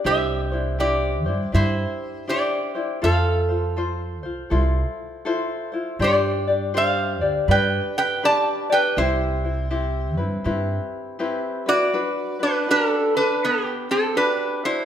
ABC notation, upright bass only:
X:1
M:4/4
L:1/8
Q:"Swing" 1/4=81
K:C
V:1 name="Upright bass" clef=bass
C,,3 G,, G,, z3 | F,,3 C,, C,, z3 | G,,3 D,, G,, z3 | C,,3 G,, G,, z3 |
[K:G] z8 |]